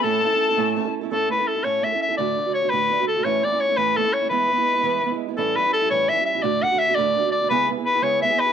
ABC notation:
X:1
M:6/8
L:1/16
Q:3/8=113
K:A
V:1 name="Tin whistle"
a8- a2 z2 | z12 | z12 | z12 |
z12 | z12 | z12 | z12 |]
V:2 name="Soprano saxophone"
A8- A2 z2 | A2 B2 A2 c2 e2 e2 | d4 c2 B4 A2 | c2 d2 c2 B2 A2 c2 |
B8- B2 z2 | A2 B2 A2 c2 e2 e2 | d2 f2 e2 d4 d2 | B2 z2 B2 c2 e2 B2 |]
V:3 name="Steel-string acoustic guitar"
[A,,A,CEA]2 [A,CEA] [CEA]2 [CEA] [A,,A,CEA]2 [A,CEA] [CEA]2 [CEA] | [A,,A,CEA]2 [A,CEA] [CEA]2 [CEA] [A,,A,CEA]2 [A,CEA] [CEA]2 [CEA] | [D,,A,,D,A,DF]2 [D,A,DF] [D,A,DF]2 [D,A,DF] [D,,A,,D,A,DF]2 [D,A,DF] [D,A,DF]2 [D,A,DF] | [A,,E,A,CE]2 [E,A,CE] [A,CE]2 [A,CE] [A,,E,A,CE]2 [E,A,CE] [A,CE]2 [A,CE] |
[E,G,B,E]2 [E,G,B,E] [G,B,E]2 [G,B,E] [E,G,B,E]2 [E,G,B,E] [G,B,E]2 [G,B,E] | [A,,E,=G,CE]2 [E,G,CE] [G,CE]2 [G,CE] [A,,E,G,CE]2 [E,G,CE] [G,CE]2 [G,CE] | [D,,A,,D,A,DF]2 [D,A,DF] [D,A,DF]2 [D,A,DF] [D,,A,,D,A,DF]2 [D,A,DF] [D,A,DF]2 [D,A,DF] | [C,G,B,EG]2 [G,B,EG] [B,EG]2 [B,EG] [C,G,B,EG]2 [G,B,EG] [B,EG]2 [EG] |]